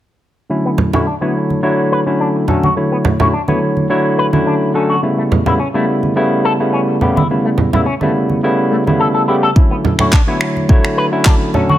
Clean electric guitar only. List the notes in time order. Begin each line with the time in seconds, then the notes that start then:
0.65 B3
0.94 F#4
1.07 D4
1.22 B3
1.92 B4
2.20 D4
2.48 C#4
2.64 F#4
2.92 B3
3.20 F#4
3.33 D4
3.48 B3
4.18 B4
4.47 D4
4.75 C#4
4.90 F#4
5.18 A3
5.46 E4
5.60 C#4
5.74 A3
6.44 A4
6.73 C#4
7.01 B3
7.16 E4
7.45 A3
7.73 E4
7.86 C#4
8.01 A3
8.71 A3
8.99 A4
9.14 A4
9.28 E4
9.43 A4
9.71 B3
9.99 F#4
10.13 D4
10.28 B3
10.97 B4
11.26 D4
11.54 C#4
11.69 F#4